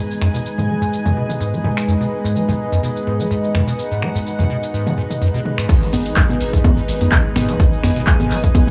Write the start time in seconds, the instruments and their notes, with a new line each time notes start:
Already playing: analog synth pad G#3 G#4 B4 D#5, ambient pad D#4 B4 G#5
0.11 shaker
0.21 acid bass F#2, finger snap
0.34 acid bass B2, shaker
0.46 shaker
0.58 acid bass G#2, mid tom, shaker
0.69 acid bass G#3
0.82 acid bass G#2, shaker
0.93 shaker
1.05 acid bass F#2, mid tom, shaker
1.17 acid bass B2
1.29 mid tom, shaker
1.40 acid bass G#2, shaker
1.53 acid bass G#3, shaker
1.64 acid bass G#2, mid tom
1.77 finger snap, shaker
1.88 acid bass F#2, shaker
1.98 acid bass B2, ambient pad F#5, shaker
2.25 acid bass G#2, shaker
2.36 acid bass G#3, shaker
2.48 acid bass G#2, mid tom, shaker
2.72 acid bass F#2, shaker
2.83 acid bass B2, shaker
2.97 shaker
3.07 acid bass G#2
3.20 acid bass G#3, shaker
3.31 acid bass G#2, shaker
3.44 shaker
3.55 acid bass F#2, finger snap, mid tom
3.67 acid bass B2, shaker
3.79 shaker
3.91 acid bass G#2, shaker
4.02 acid bass G#3, finger snap
4.15 acid bass G#2, shaker
4.27 shaker
4.39 acid bass F#2, mid tom, shaker
4.50 acid bass B2
4.63 shaker
4.74 acid bass G#2, shaker
4.86 acid bass G#3, mid tom, shaker
4.98 acid bass G#2
5.10 mid tom, shaker
5.21 acid bass F#2, shaker
5.34 acid bass B2, shaker
5.45 mid tom
5.58 acid bass G#2, finger snap, shaker
5.69 acid bass G#2, analog synth pad G#3 G#4 B4 D#5, kick, closed hi-hat, crash, shaker
5.82 acid bass G#3, shaker
5.93 sub bass G#1, acid bass G#2, open hi-hat, high conga, shaker
6.03 ambient pad G#5, closed hi-hat, shaker
6.16 acid bass F#2, kick, clap, closed hi-hat, shaker
6.29 acid bass B2, mid tom, high conga, shaker
6.41 sub bass G#1, open hi-hat, shaker
6.53 acid bass G#2, kick, closed hi-hat, shaker
6.64 acid bass G#3, kick, closed hi-hat, high conga, shaker
6.77 acid bass G#2, shaker
6.88 sub bass G#1, open hi-hat, shaker
7.01 acid bass F#2, closed hi-hat, high conga, shaker
7.12 acid bass B2, kick, clap, closed hi-hat, shaker
7.36 sub bass G#1, acid bass G#2, finger snap, open hi-hat, mid tom, high conga, shaker
7.48 acid bass G#3, closed hi-hat, shaker
7.60 acid bass G#2, kick, closed hi-hat, shaker
7.73 shaker
7.83 sub bass G#1, acid bass F#2, finger snap, open hi-hat, high conga, shaker
7.96 acid bass B2, closed hi-hat, shaker
8.07 kick, clap, closed hi-hat, shaker
8.20 acid bass G#2, mid tom, high conga, shaker
8.31 sub bass G#1, acid bass G#3, clap, open hi-hat, shaker
8.44 acid bass G#2, kick, closed hi-hat, shaker
8.55 kick, closed hi-hat, high conga, shaker
8.68 acid bass F#2, mid tom